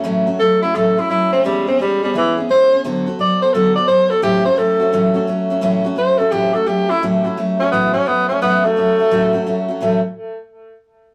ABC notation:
X:1
M:4/4
L:1/8
Q:"Swing" 1/4=172
K:A
V:1 name="Tenor saxophone"
z2 A E A E E =C | =G, =C G, G, E, z =c2 | z2 d =c A d c A | =G =c A4 z2 |
z2 =c A =G A G E | z3 C B, C B, C | B, A,6 z | A, z6 z |]
V:2 name="Steel-string acoustic guitar"
[A,,E,F,A,CF] [F,A,CF] [F,A,CF] [F,A,CF] [A,,E,F,A,CF] [F,A,CF] [F,A,CF] [F,A,CF] | [E,G,B,CG] [B,CG] [G,B,CG] [B,CG] [E,G,B,CG] [B,CG] [G,B,CG] [B,CG] | [D,F,B,FA] [B,FA] [F,B,FA] [B,FA] [D,F,B,FA] [B,FA] [F,B,FA] [B,FA] | [A,,E,F,A,CF] [F,A,CF] [F,A,CF] [F,A,CF] [A,,E,F,A,CF] [F,A,CF] [F,A,CF] [F,A,CF] |
[A,,E,F,A,CF] [F,A,CF] [F,A,CF] [F,A,CF] [A,,E,F,A,CF] [F,A,CF] [F,A,CF] [F,A,CF] | [A,,E,F,A,CF] [F,A,CF] [F,A,CF] [F,A,CF] [A,,E,F,A,CF] [F,A,CF] [F,A,CF] [F,A,CF] | [A,,E,F,A,CF] [F,A,CF] [F,A,CF] [F,A,CF] [A,,E,F,A,CF] [F,A,CF] [F,A,CF] [F,A,CF] | [A,,E,F,A,CF] z6 z |]